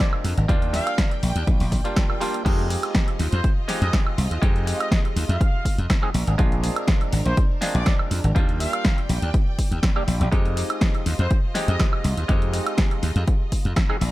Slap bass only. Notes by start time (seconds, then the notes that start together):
0.24 F2
0.37 G#1
0.49 D#2
1.23 A#1
1.36 D#2
1.47 A#1
1.60 A#1
1.72 A#1
2.46 F2
3.20 D#2
3.33 F2
3.82 F2
4.18 C2
4.31 D#2
4.42 F2
5.16 D#2
5.29 F2
5.78 F2
6.14 A#1
6.27 G#1
6.39 A#1
7.13 G#1
7.26 A#1
7.75 A#1
8.11 F2
8.24 G#1
8.36 D#2
9.09 A#1
9.22 D#2
9.71 D#2
10.08 A#1
10.21 A#1
10.32 F2
11.06 D#2
11.19 F2
11.68 F2
12.04 C2
12.17 D#2
12.29 F2
13.03 D#2
13.16 F2
13.65 F2
14.01 A#1